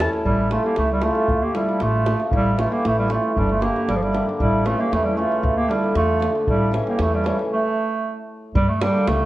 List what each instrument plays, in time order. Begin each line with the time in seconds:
Already playing: accordion A5
0.00 hammered dulcimer A3 C#4 E4 A4, davul high
0.13 davul high
0.25 upright bass A1, clarinet G3, accordion E4, davul low
0.50 hammered dulcimer A3 C#4 E4 A4, clarinet A3, accordion F4, davul high
0.65 clarinet A#3, accordion G4, davul high
0.76 upright bass C#2, clarinet A3, accordion E4, davul high
0.92 clarinet G3, accordion E4
1.01 hammered dulcimer A3 C#4 E4 A4, clarinet A3, accordion F4, davul high
1.15 davul high
1.28 upright bass D2, davul low
1.42 clarinet A#3, accordion G4
1.54 hammered dulcimer F3 A3 D4 F4, clarinet G3, accordion E4, davul high
1.69 davul high
1.80 upright bass A1, clarinet A3, accordion F4, davul high
2.06 hammered dulcimer F3 A3 D4 F4, davul high
2.20 davul high
2.31 upright bass A1, clarinet G3, accordion E4, davul low
2.57 hammered dulcimer E3 A3 C#4 E4, clarinet A3, accordion F4, davul high
2.71 clarinet A#3, accordion G4, davul high
2.85 upright bass A1, clarinet A3, accordion E4, davul high
2.98 clarinet G3, accordion E4
3.08 hammered dulcimer E3 A3 C#4 E4, clarinet A3, accordion F4, davul high
3.24 davul high
3.33 clarinet G3 A3, accordion F4, davul low
3.37 upright bass G1, accordion D4
3.50 clarinet A3, accordion F4, davul high
3.60 hammered dulcimer D3 G3 A#3 D4, clarinet A#3, accordion G4, davul high
3.76 davul high
3.88 upright bass G1, clarinet G3, accordion D4, davul high
3.96 clarinet F3, accordion D4
4.03 clarinet G3, accordion E4, davul high
4.13 hammered dulcimer D3 G3 A#3 D4, davul high
4.29 davul high
4.40 upright bass A1, clarinet G3, accordion E4, davul low
4.65 hammered dulcimer C#3 E3 A3 C#4, clarinet A3, accordion F4, davul high
4.80 clarinet A#3, accordion G4, davul high
4.92 upright bass E2, clarinet A3, accordion E4, davul high
5.04 clarinet G3
5.08 accordion E4
5.16 hammered dulcimer C#3 E3 A3 C#4, clarinet A3, accordion F4
5.32 davul high
5.43 upright bass D2, davul low
5.57 clarinet A#3, accordion G4
5.68 hammered dulcimer D3 F3 A3 D4, clarinet G3, accordion E4, davul high
5.84 davul high
5.95 upright bass E2, clarinet A3, accordion F4, davul high
6.19 hammered dulcimer D3 F3 A3 D4, davul high
6.35 davul high
6.47 upright bass A1, clarinet G3, accordion E4, davul low
6.71 hammered dulcimer C#3 E3 A3 C#4, davul high
6.87 clarinet A#3, accordion G4, davul high
6.99 upright bass E2, clarinet A3, accordion E4, davul high
7.13 clarinet G3, accordion E4
7.24 hammered dulcimer C#3 E3 A3 C#4, clarinet G3, accordion E4, davul high
7.39 davul high
7.53 clarinet A3
8.55 upright bass G2, clarinet G3, davul low
8.69 clarinet A3
8.80 hammered dulcimer D3 G3 A#3 D4, clarinet G3, davul high
9.07 upright bass C#2, clarinet A3, davul high